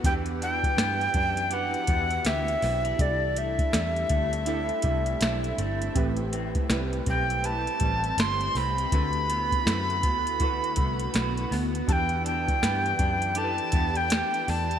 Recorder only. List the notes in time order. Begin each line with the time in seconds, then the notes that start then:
0.05 G5
0.43 G5
1.53 F#5
2.26 E5
3.01 D5
3.38 E5
7.09 G5
7.46 A5
8.20 C6
8.57 B5
11.89 G5 A5
12.26 G5
13.38 A5
13.97 G5
14.50 A5